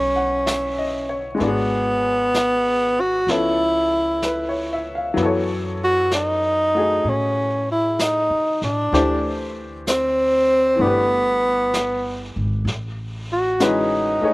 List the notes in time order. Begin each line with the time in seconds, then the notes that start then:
Already playing: B1 D#3 G#3 C#4 F#4 B4
0.16 F#5
0.46 E5, brush sweep, snare, hi-hat pedal
0.78 D#5
1.09 C#5
1.35 G#3 A3 B3
1.40 G#1 D4 F#4, brush sweep, snare
1.45 B3 G#4
2.34 brush sweep, snare, hi-hat pedal
3.00 F#4
3.27 C#2 F3 B3 C#4 E4 A4, brush sweep, snare
3.31 E4
4.22 B4, brush sweep, snare, hi-hat pedal
4.49 C#5
4.73 E5
4.95 F5
5.14 F#2 F#3 B3, brush sweep, snare
5.20 E3 A4
5.25 C#5
5.84 F#4
6.11 D#4, brush sweep, snare, hi-hat pedal
6.75 A3 F#4 G#4
7.04 A2, brush sweep
7.09 C#4
7.72 E4
7.99 D#4, brush sweep, snare, hi-hat pedal
8.30 C#3
8.62 A2 D4, snare
8.92 D2 E3 A3 D4 G4 C5, brush sweep, snare
9.87 C4, brush sweep, snare, hi-hat pedal
10.75 G1 E3 A3
10.80 B3 D4 G4, brush sweep
10.87 B4
11.74 brush sweep, snare, hi-hat pedal
12.36 G#1
12.65 A1, brush sweep, snare
13.32 F#4
13.60 E3 G#3 C#4 D#4 F#4 B4, brush sweep, snare, hi-hat pedal
14.21 A3 G#4 C#5 D#5, muted upright bass stroke